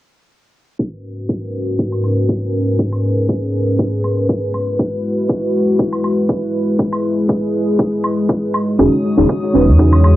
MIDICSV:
0, 0, Header, 1, 6, 480
1, 0, Start_track
1, 0, Key_signature, 5, "minor"
1, 0, Tempo, 500000
1, 759, Time_signature, 4, 2, 24, 8
1, 9756, End_track
2, 0, Start_track
2, 0, Title_t, "Violin section"
2, 0, Program_c, 0, 48
2, 8437, Note_on_c, 0, 87, 75
2, 9756, Note_off_c, 0, 87, 0
2, 9756, End_track
3, 0, Start_track
3, 0, Title_t, "Analog synth pad"
3, 0, Program_c, 1, 89
3, 762, Note_on_c, 1, 44, 75
3, 762, Note_on_c, 1, 66, 67
3, 762, Note_on_c, 1, 70, 69
3, 762, Note_on_c, 1, 71, 82
3, 763, Note_on_c, 1, 61, 70
3, 2662, Note_off_c, 1, 66, 0
3, 2678, Note_on_c, 1, 68, 66
3, 4325, Note_off_c, 1, 44, 0
3, 4325, Note_off_c, 1, 61, 0
3, 4325, Note_off_c, 1, 70, 0
3, 4342, Note_off_c, 1, 68, 0
3, 4359, Note_on_c, 1, 56, 77
3, 4359, Note_on_c, 1, 64, 72
3, 4359, Note_on_c, 1, 66, 71
3, 6260, Note_off_c, 1, 66, 0
3, 6281, Note_on_c, 1, 68, 72
3, 8161, Note_off_c, 1, 64, 0
3, 8162, Note_off_c, 1, 71, 0
3, 8181, Note_off_c, 1, 68, 0
3, 8200, Note_on_c, 1, 63, 69
3, 8200, Note_on_c, 1, 66, 73
3, 8200, Note_on_c, 1, 73, 84
3, 9756, Note_off_c, 1, 56, 0
3, 9756, Note_off_c, 1, 63, 0
3, 9756, Note_off_c, 1, 66, 0
3, 9756, Note_off_c, 1, 73, 0
3, 9756, End_track
4, 0, Start_track
4, 0, Title_t, "Synth stab"
4, 0, Program_c, 2, 62
4, 8434, Note_on_c, 2, 61, 81
4, 8437, Note_on_c, 2, 63, 75
4, 8441, Note_on_c, 2, 66, 70
4, 8444, Note_on_c, 2, 68, 87
4, 8587, Note_off_c, 2, 61, 0
4, 8588, Note_off_c, 2, 63, 0
4, 8590, Note_off_c, 2, 66, 0
4, 8592, Note_off_c, 2, 68, 0
4, 8803, Note_on_c, 2, 61, 78
4, 8806, Note_on_c, 2, 63, 67
4, 8809, Note_on_c, 2, 66, 69
4, 8813, Note_on_c, 2, 68, 83
4, 8940, Note_off_c, 2, 61, 0
4, 8942, Note_off_c, 2, 63, 0
4, 8944, Note_off_c, 2, 66, 0
4, 8945, Note_off_c, 2, 68, 0
4, 9154, Note_on_c, 2, 61, 75
4, 9157, Note_on_c, 2, 63, 67
4, 9160, Note_on_c, 2, 66, 71
4, 9163, Note_on_c, 2, 71, 77
4, 9307, Note_off_c, 2, 61, 0
4, 9308, Note_off_c, 2, 63, 0
4, 9310, Note_off_c, 2, 66, 0
4, 9311, Note_off_c, 2, 71, 0
4, 9394, Note_on_c, 2, 61, 82
4, 9397, Note_on_c, 2, 63, 73
4, 9400, Note_on_c, 2, 66, 77
4, 9403, Note_on_c, 2, 68, 91
4, 9756, Note_off_c, 2, 61, 0
4, 9756, Note_off_c, 2, 63, 0
4, 9756, Note_off_c, 2, 66, 0
4, 9756, Note_off_c, 2, 68, 0
4, 9756, End_track
5, 0, Start_track
5, 0, Title_t, "Sub bass"
5, 0, Program_c, 3, 38
5, 8439, Note_on_c, 3, 28, 97
5, 8526, Note_off_c, 3, 28, 0
5, 8810, Note_on_c, 3, 28, 98
5, 8883, Note_off_c, 3, 28, 0
5, 9160, Note_on_c, 3, 28, 85
5, 9289, Note_on_c, 3, 40, 93
5, 9304, Note_off_c, 3, 28, 0
5, 9756, Note_off_c, 3, 40, 0
5, 9756, End_track
6, 0, Start_track
6, 0, Title_t, "Drums"
6, 759, Note_on_c, 9, 36, 104
6, 855, Note_off_c, 9, 36, 0
6, 1240, Note_on_c, 9, 36, 100
6, 1336, Note_off_c, 9, 36, 0
6, 1720, Note_on_c, 9, 36, 107
6, 1816, Note_off_c, 9, 36, 0
6, 1848, Note_on_c, 9, 76, 59
6, 1944, Note_off_c, 9, 76, 0
6, 1959, Note_on_c, 9, 76, 68
6, 2055, Note_off_c, 9, 76, 0
6, 2200, Note_on_c, 9, 36, 103
6, 2296, Note_off_c, 9, 36, 0
6, 2680, Note_on_c, 9, 36, 113
6, 2776, Note_off_c, 9, 36, 0
6, 2809, Note_on_c, 9, 76, 78
6, 2905, Note_off_c, 9, 76, 0
6, 3159, Note_on_c, 9, 36, 104
6, 3255, Note_off_c, 9, 36, 0
6, 3639, Note_on_c, 9, 36, 112
6, 3735, Note_off_c, 9, 36, 0
6, 3879, Note_on_c, 9, 76, 73
6, 3975, Note_off_c, 9, 76, 0
6, 4120, Note_on_c, 9, 36, 111
6, 4216, Note_off_c, 9, 36, 0
6, 4359, Note_on_c, 9, 76, 59
6, 4455, Note_off_c, 9, 76, 0
6, 4600, Note_on_c, 9, 36, 116
6, 4696, Note_off_c, 9, 36, 0
6, 5080, Note_on_c, 9, 36, 110
6, 5176, Note_off_c, 9, 36, 0
6, 5560, Note_on_c, 9, 36, 114
6, 5656, Note_off_c, 9, 36, 0
6, 5689, Note_on_c, 9, 76, 58
6, 5785, Note_off_c, 9, 76, 0
6, 5800, Note_on_c, 9, 76, 66
6, 5896, Note_off_c, 9, 76, 0
6, 6039, Note_on_c, 9, 36, 110
6, 6135, Note_off_c, 9, 36, 0
6, 6519, Note_on_c, 9, 36, 112
6, 6615, Note_off_c, 9, 36, 0
6, 6649, Note_on_c, 9, 76, 75
6, 6745, Note_off_c, 9, 76, 0
6, 6999, Note_on_c, 9, 36, 113
6, 7095, Note_off_c, 9, 36, 0
6, 7479, Note_on_c, 9, 36, 116
6, 7575, Note_off_c, 9, 36, 0
6, 7718, Note_on_c, 9, 76, 66
6, 7814, Note_off_c, 9, 76, 0
6, 7959, Note_on_c, 9, 36, 113
6, 8055, Note_off_c, 9, 36, 0
6, 8199, Note_on_c, 9, 76, 58
6, 8295, Note_off_c, 9, 76, 0
6, 8439, Note_on_c, 9, 36, 114
6, 8535, Note_off_c, 9, 36, 0
6, 8919, Note_on_c, 9, 36, 102
6, 9015, Note_off_c, 9, 36, 0
6, 9399, Note_on_c, 9, 36, 111
6, 9495, Note_off_c, 9, 36, 0
6, 9528, Note_on_c, 9, 76, 58
6, 9624, Note_off_c, 9, 76, 0
6, 9638, Note_on_c, 9, 76, 68
6, 9734, Note_off_c, 9, 76, 0
6, 9756, End_track
0, 0, End_of_file